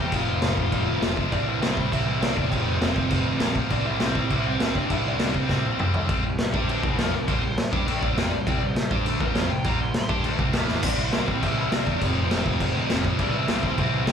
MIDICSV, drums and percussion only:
0, 0, Header, 1, 2, 480
1, 0, Start_track
1, 0, Key_signature, 0, "major"
1, 0, Tempo, 298805
1, 191, Time_signature, 4, 2, 24, 8
1, 9311, Tempo, 295858
1, 9793, Key_signature, 0, "major"
1, 17488, Key_signature, 0, "major"
1, 22816, End_track
2, 0, Start_track
2, 0, Title_t, "Drums"
2, 191, Note_on_c, 9, 49, 65
2, 198, Note_on_c, 9, 36, 96
2, 352, Note_off_c, 9, 49, 0
2, 359, Note_off_c, 9, 36, 0
2, 672, Note_on_c, 9, 38, 107
2, 672, Note_on_c, 9, 49, 68
2, 833, Note_off_c, 9, 38, 0
2, 833, Note_off_c, 9, 49, 0
2, 922, Note_on_c, 9, 36, 93
2, 1082, Note_off_c, 9, 36, 0
2, 1161, Note_on_c, 9, 36, 97
2, 1161, Note_on_c, 9, 49, 62
2, 1321, Note_off_c, 9, 36, 0
2, 1321, Note_off_c, 9, 49, 0
2, 1643, Note_on_c, 9, 38, 109
2, 1643, Note_on_c, 9, 49, 59
2, 1804, Note_off_c, 9, 38, 0
2, 1804, Note_off_c, 9, 49, 0
2, 1885, Note_on_c, 9, 36, 82
2, 2045, Note_off_c, 9, 36, 0
2, 2120, Note_on_c, 9, 49, 57
2, 2124, Note_on_c, 9, 36, 94
2, 2281, Note_off_c, 9, 49, 0
2, 2285, Note_off_c, 9, 36, 0
2, 2609, Note_on_c, 9, 38, 111
2, 2609, Note_on_c, 9, 49, 60
2, 2770, Note_off_c, 9, 38, 0
2, 2770, Note_off_c, 9, 49, 0
2, 2847, Note_on_c, 9, 36, 89
2, 3007, Note_off_c, 9, 36, 0
2, 3088, Note_on_c, 9, 36, 95
2, 3099, Note_on_c, 9, 49, 62
2, 3249, Note_off_c, 9, 36, 0
2, 3260, Note_off_c, 9, 49, 0
2, 3572, Note_on_c, 9, 38, 114
2, 3572, Note_on_c, 9, 49, 69
2, 3732, Note_off_c, 9, 38, 0
2, 3732, Note_off_c, 9, 49, 0
2, 3806, Note_on_c, 9, 36, 90
2, 3966, Note_off_c, 9, 36, 0
2, 4045, Note_on_c, 9, 36, 96
2, 4054, Note_on_c, 9, 49, 67
2, 4205, Note_off_c, 9, 36, 0
2, 4215, Note_off_c, 9, 49, 0
2, 4524, Note_on_c, 9, 38, 113
2, 4524, Note_on_c, 9, 49, 69
2, 4685, Note_off_c, 9, 38, 0
2, 4685, Note_off_c, 9, 49, 0
2, 4755, Note_on_c, 9, 36, 92
2, 4916, Note_off_c, 9, 36, 0
2, 4988, Note_on_c, 9, 49, 65
2, 4995, Note_on_c, 9, 36, 104
2, 5148, Note_off_c, 9, 49, 0
2, 5155, Note_off_c, 9, 36, 0
2, 5462, Note_on_c, 9, 38, 125
2, 5462, Note_on_c, 9, 49, 66
2, 5623, Note_off_c, 9, 38, 0
2, 5623, Note_off_c, 9, 49, 0
2, 5713, Note_on_c, 9, 36, 86
2, 5873, Note_off_c, 9, 36, 0
2, 5948, Note_on_c, 9, 49, 61
2, 5954, Note_on_c, 9, 36, 96
2, 6108, Note_off_c, 9, 49, 0
2, 6115, Note_off_c, 9, 36, 0
2, 6425, Note_on_c, 9, 38, 113
2, 6425, Note_on_c, 9, 49, 60
2, 6586, Note_off_c, 9, 38, 0
2, 6586, Note_off_c, 9, 49, 0
2, 6673, Note_on_c, 9, 36, 87
2, 6834, Note_off_c, 9, 36, 0
2, 6912, Note_on_c, 9, 49, 61
2, 6916, Note_on_c, 9, 36, 96
2, 7072, Note_off_c, 9, 49, 0
2, 7077, Note_off_c, 9, 36, 0
2, 7391, Note_on_c, 9, 38, 113
2, 7391, Note_on_c, 9, 49, 70
2, 7552, Note_off_c, 9, 38, 0
2, 7552, Note_off_c, 9, 49, 0
2, 7634, Note_on_c, 9, 36, 83
2, 7795, Note_off_c, 9, 36, 0
2, 7873, Note_on_c, 9, 36, 100
2, 7874, Note_on_c, 9, 49, 65
2, 8034, Note_off_c, 9, 36, 0
2, 8035, Note_off_c, 9, 49, 0
2, 8344, Note_on_c, 9, 38, 117
2, 8344, Note_on_c, 9, 49, 69
2, 8505, Note_off_c, 9, 38, 0
2, 8505, Note_off_c, 9, 49, 0
2, 8586, Note_on_c, 9, 36, 90
2, 8746, Note_off_c, 9, 36, 0
2, 8819, Note_on_c, 9, 38, 69
2, 8825, Note_on_c, 9, 36, 100
2, 8980, Note_off_c, 9, 38, 0
2, 8986, Note_off_c, 9, 36, 0
2, 9304, Note_on_c, 9, 45, 96
2, 9466, Note_off_c, 9, 45, 0
2, 9545, Note_on_c, 9, 43, 92
2, 9707, Note_off_c, 9, 43, 0
2, 9788, Note_on_c, 9, 49, 65
2, 9789, Note_on_c, 9, 36, 107
2, 9951, Note_off_c, 9, 36, 0
2, 9951, Note_off_c, 9, 49, 0
2, 10266, Note_on_c, 9, 38, 116
2, 10266, Note_on_c, 9, 49, 59
2, 10429, Note_off_c, 9, 38, 0
2, 10429, Note_off_c, 9, 49, 0
2, 10515, Note_on_c, 9, 36, 108
2, 10677, Note_off_c, 9, 36, 0
2, 10762, Note_on_c, 9, 49, 61
2, 10924, Note_off_c, 9, 49, 0
2, 10996, Note_on_c, 9, 36, 110
2, 11158, Note_off_c, 9, 36, 0
2, 11240, Note_on_c, 9, 38, 114
2, 11240, Note_on_c, 9, 49, 63
2, 11402, Note_off_c, 9, 38, 0
2, 11402, Note_off_c, 9, 49, 0
2, 11720, Note_on_c, 9, 36, 106
2, 11722, Note_on_c, 9, 49, 67
2, 11882, Note_off_c, 9, 36, 0
2, 11885, Note_off_c, 9, 49, 0
2, 12199, Note_on_c, 9, 38, 119
2, 12199, Note_on_c, 9, 49, 71
2, 12361, Note_off_c, 9, 38, 0
2, 12361, Note_off_c, 9, 49, 0
2, 12445, Note_on_c, 9, 36, 113
2, 12607, Note_off_c, 9, 36, 0
2, 12688, Note_on_c, 9, 49, 63
2, 12850, Note_off_c, 9, 49, 0
2, 12930, Note_on_c, 9, 36, 108
2, 13092, Note_off_c, 9, 36, 0
2, 13171, Note_on_c, 9, 38, 116
2, 13171, Note_on_c, 9, 49, 66
2, 13333, Note_off_c, 9, 38, 0
2, 13333, Note_off_c, 9, 49, 0
2, 13647, Note_on_c, 9, 36, 110
2, 13653, Note_on_c, 9, 49, 65
2, 13809, Note_off_c, 9, 36, 0
2, 13815, Note_off_c, 9, 49, 0
2, 14122, Note_on_c, 9, 38, 122
2, 14122, Note_on_c, 9, 49, 62
2, 14284, Note_off_c, 9, 38, 0
2, 14284, Note_off_c, 9, 49, 0
2, 14363, Note_on_c, 9, 36, 112
2, 14525, Note_off_c, 9, 36, 0
2, 14603, Note_on_c, 9, 49, 62
2, 14765, Note_off_c, 9, 49, 0
2, 14841, Note_on_c, 9, 36, 114
2, 15004, Note_off_c, 9, 36, 0
2, 15079, Note_on_c, 9, 38, 116
2, 15079, Note_on_c, 9, 49, 62
2, 15242, Note_off_c, 9, 38, 0
2, 15242, Note_off_c, 9, 49, 0
2, 15553, Note_on_c, 9, 49, 62
2, 15560, Note_on_c, 9, 36, 112
2, 15715, Note_off_c, 9, 49, 0
2, 15722, Note_off_c, 9, 36, 0
2, 16037, Note_on_c, 9, 38, 112
2, 16037, Note_on_c, 9, 49, 67
2, 16199, Note_off_c, 9, 38, 0
2, 16199, Note_off_c, 9, 49, 0
2, 16284, Note_on_c, 9, 36, 110
2, 16446, Note_off_c, 9, 36, 0
2, 16520, Note_on_c, 9, 49, 68
2, 16682, Note_off_c, 9, 49, 0
2, 16762, Note_on_c, 9, 36, 108
2, 16925, Note_off_c, 9, 36, 0
2, 16996, Note_on_c, 9, 38, 114
2, 16996, Note_on_c, 9, 49, 69
2, 17158, Note_off_c, 9, 38, 0
2, 17158, Note_off_c, 9, 49, 0
2, 17230, Note_on_c, 9, 38, 64
2, 17392, Note_off_c, 9, 38, 0
2, 17472, Note_on_c, 9, 49, 62
2, 17472, Note_on_c, 9, 57, 120
2, 17483, Note_on_c, 9, 36, 117
2, 17634, Note_off_c, 9, 49, 0
2, 17634, Note_off_c, 9, 57, 0
2, 17645, Note_off_c, 9, 36, 0
2, 17957, Note_on_c, 9, 38, 115
2, 17957, Note_on_c, 9, 49, 61
2, 18119, Note_off_c, 9, 38, 0
2, 18119, Note_off_c, 9, 49, 0
2, 18208, Note_on_c, 9, 36, 90
2, 18370, Note_off_c, 9, 36, 0
2, 18447, Note_on_c, 9, 49, 63
2, 18448, Note_on_c, 9, 36, 102
2, 18610, Note_off_c, 9, 36, 0
2, 18610, Note_off_c, 9, 49, 0
2, 18921, Note_on_c, 9, 38, 115
2, 18921, Note_on_c, 9, 49, 66
2, 19083, Note_off_c, 9, 38, 0
2, 19083, Note_off_c, 9, 49, 0
2, 19164, Note_on_c, 9, 36, 84
2, 19326, Note_off_c, 9, 36, 0
2, 19397, Note_on_c, 9, 49, 62
2, 19402, Note_on_c, 9, 36, 96
2, 19559, Note_off_c, 9, 49, 0
2, 19564, Note_off_c, 9, 36, 0
2, 19878, Note_on_c, 9, 38, 116
2, 19878, Note_on_c, 9, 49, 71
2, 20040, Note_off_c, 9, 38, 0
2, 20040, Note_off_c, 9, 49, 0
2, 20119, Note_on_c, 9, 36, 96
2, 20281, Note_off_c, 9, 36, 0
2, 20354, Note_on_c, 9, 49, 72
2, 20357, Note_on_c, 9, 36, 103
2, 20516, Note_off_c, 9, 49, 0
2, 20519, Note_off_c, 9, 36, 0
2, 20832, Note_on_c, 9, 38, 116
2, 20832, Note_on_c, 9, 49, 71
2, 20994, Note_off_c, 9, 38, 0
2, 20994, Note_off_c, 9, 49, 0
2, 21073, Note_on_c, 9, 36, 91
2, 21235, Note_off_c, 9, 36, 0
2, 21301, Note_on_c, 9, 49, 64
2, 21310, Note_on_c, 9, 36, 99
2, 21464, Note_off_c, 9, 49, 0
2, 21472, Note_off_c, 9, 36, 0
2, 21779, Note_on_c, 9, 38, 111
2, 21779, Note_on_c, 9, 49, 63
2, 21941, Note_off_c, 9, 38, 0
2, 21941, Note_off_c, 9, 49, 0
2, 22022, Note_on_c, 9, 36, 91
2, 22184, Note_off_c, 9, 36, 0
2, 22260, Note_on_c, 9, 49, 58
2, 22263, Note_on_c, 9, 36, 98
2, 22422, Note_off_c, 9, 49, 0
2, 22425, Note_off_c, 9, 36, 0
2, 22736, Note_on_c, 9, 38, 123
2, 22736, Note_on_c, 9, 49, 69
2, 22816, Note_off_c, 9, 38, 0
2, 22816, Note_off_c, 9, 49, 0
2, 22816, End_track
0, 0, End_of_file